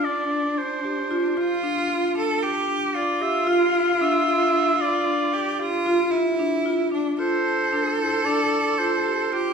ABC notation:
X:1
M:9/8
L:1/8
Q:3/8=76
K:Dm
V:1 name="Oboe"
d2 c4 z3 | z2 d e f2 e3 | d4 z4 z | c3 c d2 c3 |]
V:2 name="Cello"
D4- D F3 A | G2 F6- F- | F2 G F2 E3 D | A8 G |]
V:3 name="Marimba"
z D2 G F F D F D | z D2 G F F D F D | z D2 G F F D F D | F2 D E D2 F G F |]